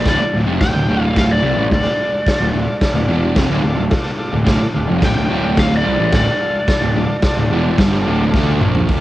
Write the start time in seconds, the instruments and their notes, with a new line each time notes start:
0.06 picked electric bass D1, distorted electric guitar D2 A2, transistor combo organ F4 A4 D5, electric slide guitar D5, kick, snare, splash, crash
0.21 muted picked electric bass stroke, muted distorted electric guitar stroke
0.33 picked electric bass D1, distorted electric guitar D2 A2, transistor combo organ F4 A4 D5
0.46 picked electric bass F1, distorted electric guitar F2 C3
0.59 picked electric bass D1, distorted electric guitar D2 A2, transistor combo organ F4 A4 D5, electric slide guitar G5, kick, snare, crash
0.74 picked electric bass D1, distorted electric guitar D2 A2
0.88 picked electric bass D1, distorted electric guitar D2 A2 D3, transistor combo organ F4 A4
0.92 transistor combo organ D5
1.02 electric slide guitar F5
1.16 transistor combo organ F4 A4 D5, electric slide guitar F5, kick, snare, crash
1.31 electric slide guitar D5
1.43 picked electric bass C2, distorted electric guitar C3 G3
1.47 transistor combo organ F4 A4 D5
1.57 picked electric bass A1, distorted electric guitar A2 E3
1.71 picked electric bass D1, distorted electric guitar D2 A2, transistor combo organ F4 D5, electric slide guitar D5, kick, snare, crash
1.76 transistor combo organ A4
2.01 transistor combo organ F4 A4 D5
2.27 transistor combo organ F4 A4, kick, snare, crash
2.31 transistor combo organ D5
2.40 picked electric bass D1, distorted electric guitar D2 A2
2.53 picked electric bass D1, distorted electric guitar D2 A2
2.58 transistor combo organ F4 A4 D5
2.67 muted distorted electric guitar stroke, muted picked electric bass stroke
2.81 transistor combo organ F4 A4 D5, kick, snare, crash
2.94 picked electric bass D1, distorted electric guitar D2 A2
3.08 picked electric bass E1, distorted electric guitar E2 B2 E3, transistor combo organ F4 A4
3.12 transistor combo organ D5
3.36 picked electric bass F1, distorted electric guitar F2 C3, transistor combo organ F4 A4 D5, kick, snare, crash
3.49 picked electric bass D1, distorted electric guitar D2 A2
3.62 picked electric bass D1, distorted electric guitar D2 A2, transistor combo organ F4 A4 D5
3.77 picked electric bass D1, distorted electric guitar D2 A2
3.90 transistor combo organ F4 A4 D5, muted distorted electric guitar stroke, muted picked electric bass stroke, kick, snare, crash
4.18 transistor combo organ F4 A4 D5
4.33 picked electric bass D1, distorted electric guitar D2 A2
4.45 picked electric bass D1, distorted electric guitar D2 A2, transistor combo organ F4 A4 D5, kick, snare, crash
4.60 muted picked electric bass stroke, muted distorted electric guitar stroke
4.74 picked electric bass D1, distorted electric guitar D2 A2, transistor combo organ F4 A4 D5
4.87 picked electric bass F1, distorted electric guitar F2 C3
5.02 picked electric bass D1, distorted electric guitar D2 A2, transistor combo organ F4 A4 D5, electric slide guitar G5, kick, snare, crash
5.15 picked electric bass D1, distorted electric guitar D2 A2
5.28 picked electric bass D1, distorted electric guitar D2 A2 D3, transistor combo organ F4 A4
5.33 transistor combo organ D5
5.55 transistor combo organ F4 A4 D5, kick, snare, crash
5.59 electric slide guitar F5
5.77 electric slide guitar D5
5.82 distorted electric guitar C3 G3, transistor combo organ F4 A4 D5
5.87 picked electric bass C2
5.98 picked electric bass A1, distorted electric guitar A2 E3
6.12 picked electric bass D1, distorted electric guitar D2 A2, transistor combo organ F4 A4 D5, electric slide guitar D5, kick, snare, crash
6.41 transistor combo organ F4 A4 F5
6.68 transistor combo organ F4 A4 D5, kick, snare, crash
6.81 picked electric bass D1, distorted electric guitar D2 A2
6.95 picked electric bass D1, distorted electric guitar D2 A2, transistor combo organ F4 A4 D5
7.09 muted picked electric bass stroke, muted distorted electric guitar stroke
7.22 transistor combo organ F4 A4 D5, kick, snare, crash
7.37 picked electric bass D1, distorted electric guitar D2 A2
7.50 picked electric bass E1, distorted electric guitar E2 B2 E3, transistor combo organ F4 A4 D5
7.78 picked electric bass G1, distorted electric guitar G2 D3 G3, transistor combo organ F4 A4 D5, kick, snare, crash
8.02 distorted electric guitar D2 A2, transistor combo organ F4 A4 D5
8.06 picked electric bass D1, distorted electric guitar D3
8.30 picked electric bass D2, distorted electric guitar D3 A3 D4, transistor combo organ F4 A4 D5, kick, snare
8.60 picked electric bass A#1, distorted electric guitar A#2 F3 A#3, transistor combo organ F4 A4 D5, mid tom
8.75 floor tom
8.86 picked electric bass D1, distorted electric guitar D2 A2, transistor combo organ F4 A4 D5, kick, open hi-hat
8.91 distorted electric guitar D3